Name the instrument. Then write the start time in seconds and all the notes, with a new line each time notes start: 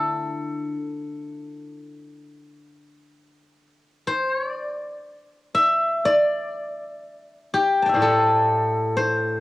guzheng
Already playing: D3 A3 D4 E4 A4 D5
4.07 C5
4.34 C#5
4.50 D5
5.55 E5
6.05 D5
7.54 G4
7.82 G5 A5
7.89 E5
7.94 A2 C5 D5
8.02 A4
8.97 C5